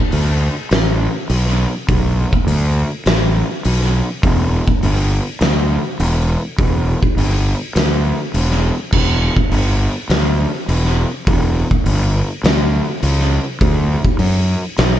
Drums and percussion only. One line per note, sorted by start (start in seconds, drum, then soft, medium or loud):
0.12 open hi-hat medium
0.71 snare loud
0.71 open hi-hat medium
1.30 open hi-hat medium
1.46 snare soft
1.89 kick loud
1.89 open hi-hat medium
2.33 kick medium
2.48 open hi-hat medium
3.06 snare loud
3.06 open hi-hat medium
3.65 open hi-hat medium
3.81 snare soft
4.23 kick loud
4.23 open hi-hat medium
4.68 kick medium
4.83 open hi-hat medium
5.41 snare loud
5.41 open hi-hat medium
6.00 open hi-hat medium
6.59 kick loud
6.59 open hi-hat medium
7.03 kick medium
7.18 open hi-hat medium
7.76 snare loud
7.76 open hi-hat medium
8.34 open hi-hat medium
8.51 snare soft
8.93 kick loud
8.93 crash loud
9.37 kick medium
9.51 open hi-hat medium
10.10 snare loud
10.10 open hi-hat medium
10.69 open hi-hat medium
10.84 snare soft
11.27 kick loud
11.27 open hi-hat medium
11.71 kick medium
11.86 open hi-hat medium
12.44 snare loud
12.44 open hi-hat medium
13.03 open hi-hat medium
13.19 snare soft
13.61 kick loud
13.61 open hi-hat medium
14.05 kick medium
14.19 open hi-hat medium
14.78 snare loud
14.78 open hi-hat medium